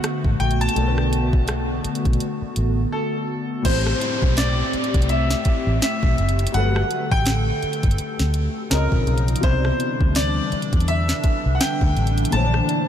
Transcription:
Already playing: D3 A3 B3 D4 F#4 B4
0.04 cross-stick, closed hi-hat
0.25 A1, kick
0.40 A#1 G5, closed hi-hat
0.51 closed hi-hat
0.61 A5, closed hi-hat
0.69 closed hi-hat
0.73 B1 B2 A3, closed hi-hat
0.78 D4 A#4
0.87 B4
0.98 cross-stick
1.13 closed hi-hat
1.33 kick
1.48 cross-stick, closed hi-hat
1.84 muted fingered electric bass stroke, closed hi-hat
1.95 closed hi-hat
2.05 B1, kick, closed hi-hat
2.13 closed hi-hat
2.20 closed hi-hat
2.42 muted fingered electric bass stroke
2.56 A1, closed hi-hat
2.92 A4
3.62 A1 A2 G3 A3 C4 G4 C5, kick, closed hi-hat, crash, downlifter
3.67 C4 C5
3.87 cross-stick
4.01 closed hi-hat
4.22 B1, kick
4.37 D5, snare, closed hi-hat
4.73 muted fingered electric bass stroke, closed hi-hat
4.84 closed hi-hat
4.94 C2, kick, closed hi-hat
5.02 closed hi-hat
5.09 E5, closed hi-hat
5.30 snare
5.45 muted fingered electric bass stroke, kick, closed hi-hat
5.67 A1
5.82 E5, snare, closed hi-hat
6.03 B1, kick
6.18 F#1, closed hi-hat
6.29 closed hi-hat
6.39 closed hi-hat
6.47 closed hi-hat
6.51 G1 D3 F#3 G3 A4 F#5, closed hi-hat
6.57 A4 B4
6.76 cross-stick
6.91 closed hi-hat
7.11 A1 G5, kick
7.26 snare, closed hi-hat
7.63 muted fingered electric bass stroke, closed hi-hat
7.73 closed hi-hat
7.83 G1, kick, closed hi-hat
7.91 closed hi-hat
7.98 muted fingered electric bass stroke, closed hi-hat
8.19 D2, snare
8.34 closed hi-hat
8.70 C#2 C#3 F3 C4 D#4 F4 A#4 D#5, snare, closed hi-hat
8.92 A#1, kick
9.07 B1, closed hi-hat
9.18 closed hi-hat
9.28 closed hi-hat
9.36 closed hi-hat
9.40 C2 B2 C3 D3 E3 G3 D4 C5, kick, closed hi-hat
9.45 E4 D5
9.65 cross-stick
9.80 closed hi-hat
10.01 D2, kick
10.15 D5, snare, closed hi-hat
10.52 muted fingered electric bass stroke, closed hi-hat
10.62 closed hi-hat
10.73 E2, kick, closed hi-hat
10.80 closed hi-hat
10.88 E5, closed hi-hat
11.09 snare
11.24 muted fingered electric bass stroke, kick, closed hi-hat
11.46 C2
11.55 F#5
11.61 G5, snare, closed hi-hat
11.81 D2, kick
11.97 A1, closed hi-hat
12.07 closed hi-hat
12.18 closed hi-hat
12.25 closed hi-hat
12.30 A#1 A#2 E3 A3 A5, closed hi-hat
12.36 C5 C#5
12.44 D5
12.54 cross-stick
12.69 closed hi-hat

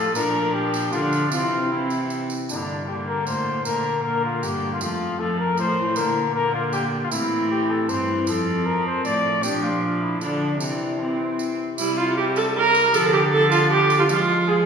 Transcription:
Already playing: A2 F3 A3 A4
0.15 A#2 F3 D4 A#4, tambourine
0.53 G4
0.74 tambourine
0.92 D3 F3 D4 F4, tambourine
1.13 tambourine
1.32 C3 E3 C4 F4, tambourine
1.71 E3 C4 E4
1.90 tambourine
2.10 tambourine
2.30 tambourine
2.49 G2 D3 A#3 D4, tambourine
2.56 E4
2.63 D4
2.88 D3 A#3 G4
3.07 A#4
3.26 A2 C5, tambourine
3.65 A#2 D3 A#3 A#4, tambourine
4.03 D3 A#3 A#4
4.24 F4
4.43 G2 G4, tambourine
4.72 F4
4.81 F2 F3 A3 F4, tambourine
5.19 F3 A3 A4
5.39 A#4
5.57 A2 F3 A3 C5, tambourine
5.78 E3
5.96 A#2 D3 A#3 A#4, tambourine
6.35 D3 A#3 A#4
6.54 F4
6.73 G4, tambourine
7.03 F4
7.11 A2 E3 C4 E4, tambourine
7.50 G4
7.70 A4
7.89 G2 E3 C4 C5, tambourine
8.27 F2 F3 C4 A4, tambourine
8.66 A#4
8.86 C5
9.05 A2 D5, tambourine
9.43 A#2 F3 D4 G4, tambourine
9.63 F4
10.01 E4
10.21 D3 F3 D4, tambourine
10.59 C3 E3 C4 D4, tambourine
10.99 E3 C4
11.39 tambourine
11.77 C3 G3 E4, tambourine
11.98 F4
12.16 G3 G4
12.36 A4, tambourine
12.56 A#4
12.75 tambourine
12.94 D3 F3 A4, tambourine
13.13 G4
13.32 F3 A4
13.51 F4, tambourine
13.70 G4
13.90 tambourine
13.99 F4
14.09 F3 G#3 F4, tambourine
14.47 G#3 G#4

